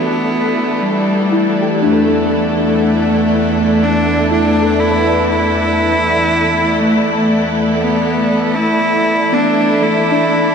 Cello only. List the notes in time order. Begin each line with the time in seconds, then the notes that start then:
Already playing: B3
0.81 G3
1.83 A3
2.34 A3
3.82 D4
4.31 D4
4.80 E4
5.29 E4
6.79 A3
7.80 B3
8.55 E4
9.33 D4
9.82 E4